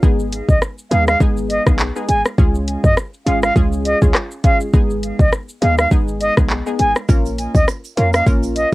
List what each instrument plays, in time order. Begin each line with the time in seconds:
0.03 808-style bass G#1, synth pluck G#3 B3 D#4 G#4, kick, shaker
0.20 shaker
0.33 closed hi-hat, shaker
0.49 808-style bass B1, flute D#5, kick, shaker
0.62 cross-stick, shaker
0.78 shaker
0.91 808-style bass D#2, synth pluck G#3 B3 D#4 G#4, flute F5, closed hi-hat, shaker
1.08 flute F5, cross-stick, shaker
1.20 808-style bass G#1, synth pluck G#3 B3 D#4 G#4, kick, shaker
1.37 shaker
1.50 flute D#5, closed hi-hat, shaker
1.66 808-style bass B1, synth pluck G#3 B3 D#4 G#4, kick, cross-stick, shaker
1.79 clap, shaker
1.96 synth pluck G#3 B3 D#4 G#4, shaker
2.09 808-style bass G#1, flute G#5, closed hi-hat, shaker
2.25 cross-stick, shaker
2.38 808-style bass C#2, synth pluck G#3 C#4 F4 G#4, kick, shaker
2.55 shaker
2.68 closed hi-hat, shaker
2.84 808-style bass F2, flute D#5, kick, shaker
2.97 cross-stick, shaker
3.14 shaker
3.26 808-style bass G#1, synth pluck G#3 C#4 F4 G#4, flute F5, closed hi-hat, shaker
3.43 flute F5, cross-stick, shaker
3.56 808-style bass C#2, synth pluck G#3 C#4 F4 G#4, kick, shaker
3.73 shaker
3.85 flute D#5, closed hi-hat, shaker
4.02 808-style bass C#2, synth pluck G#3 C#4 F4 G#4, kick, shaker
4.15 cross-stick, clap, shaker
4.31 shaker
4.44 synth pluck G#3 C#4 F4 G#4, flute F5, kick, closed hi-hat, shaker
4.61 shaker
4.74 808-style bass G#1, synth pluck G#3 B3 D#4 G#4, kick, shaker
4.90 shaker
5.03 closed hi-hat, shaker
5.19 808-style bass B1, flute D#5, kick, shaker
5.32 cross-stick, shaker
5.49 shaker
5.62 808-style bass D#2, synth pluck G#3 B3 D#4 G#4, flute F5, closed hi-hat, shaker
5.78 flute F5, cross-stick, shaker
5.91 808-style bass G#1, synth pluck G#3 B3 D#4 G#4, kick, shaker
6.08 shaker
6.21 flute D#5, closed hi-hat, shaker
6.37 808-style bass B1, synth pluck G#3 B3 D#4 G#4, kick, cross-stick, shaker
6.50 clap, shaker
6.66 synth pluck G#3 B3 D#4 G#4, shaker
6.79 808-style bass G#1, flute G#5, closed hi-hat, shaker
6.96 cross-stick, shaker
7.09 808-style bass A#1, synth pluck A#3 C#4 F4 A#4, kick, shaker
7.25 shaker
7.38 closed hi-hat, shaker
7.55 808-style bass C#2, flute D#5, kick, shaker
7.68 cross-stick, shaker
7.84 shaker
7.97 808-style bass F2, synth pluck A#3 C#4 F4 A#4, flute F5, closed hi-hat, shaker
8.13 flute F5, cross-stick, shaker
8.26 808-style bass A#1, synth pluck A#3 C#4 F4 A#4, kick, shaker
8.43 shaker
8.56 flute D#5, closed hi-hat, shaker